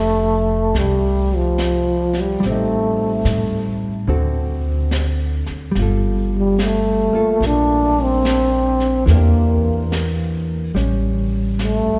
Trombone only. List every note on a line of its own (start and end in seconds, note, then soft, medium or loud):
0.00 0.80 A3 medium
0.78 1.37 G3 medium
1.36 2.22 F3 medium
2.20 2.44 G3 medium
2.48 3.81 A3 medium
6.38 6.65 G3 medium
6.64 7.48 A3 medium
7.46 8.05 D4 medium
8.03 9.06 C4 medium
9.07 9.17 A3 soft
9.15 9.95 A#3 medium
11.63 11.99 A3 medium